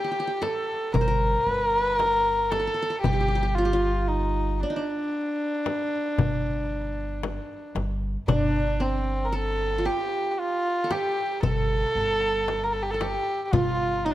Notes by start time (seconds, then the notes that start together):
Already playing: G4 A4
0.04 G4
0.11 G4
0.20 G4
0.27 G4
0.42 A4, darbuka tek, frame drum
0.93 G1 A#4, darbuka dum, frame drum
1.01 C5
1.08 A#4
1.47 G1 B4
1.64 A#4
1.81 B4
1.96 A#4, darbuka tek, frame drum
2.51 A4, darbuka tek, frame drum
2.60 A4
2.67 A4
2.74 A4
2.82 A4
2.90 A4
3.02 G1 G4, darbuka dum, frame drum
3.13 G4
3.20 G4
3.28 G4
3.35 G4
3.43 G4
3.55 F4
3.65 G4
3.73 F4
4.08 D#4
4.60 D4
4.70 D#4
4.76 D4
5.66 darbuka tek, frame drum
6.18 G1, frame drum, darbuka dum
7.23 darbuka tek, frame drum
7.75 G1, darbuka tek, frame drum
8.28 G1 D4, darbuka dum, frame drum
8.80 C4
9.25 A#4
9.32 A4
9.78 F4
9.85 G4
10.31 G4
10.39 F4
10.84 A4
10.91 G4, darbuka tek, frame drum
11.43 G1 A4, frame drum, darbuka dum
11.95 G1
12.48 darbuka tek, frame drum
12.64 A#4
12.73 A4
12.82 G4
12.91 A4
13.01 G4, darbuka tek, frame drum
13.45 G4
13.53 G1 F4, frame drum, darbuka dum
14.05 D#4
14.11 D4